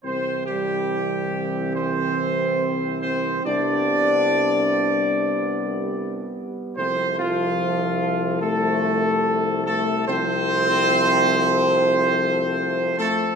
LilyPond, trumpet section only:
\new Staff \with { instrumentName = "Trumpet section" } { \time 4/4 \key c \major \tempo 4 = 72 c''8 g'4. c''4. c''8 | d''2.~ d''8 r8 | c''8 f'4. a'4. a'8 | c''2.~ c''8 a'8 | }